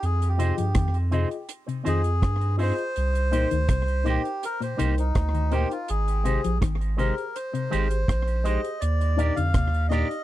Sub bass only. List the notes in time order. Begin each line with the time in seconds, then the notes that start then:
0.03 F2
0.59 G2
0.76 F2
1.87 F2
2.23 G2
2.97 C2
3.53 D2
3.69 C2
4.80 C2
5.16 D2
5.90 G#1
6.46 A#1
6.63 G#1
7.73 G#1
8.09 A#1
8.82 D#2
9.38 F2
9.55 D#2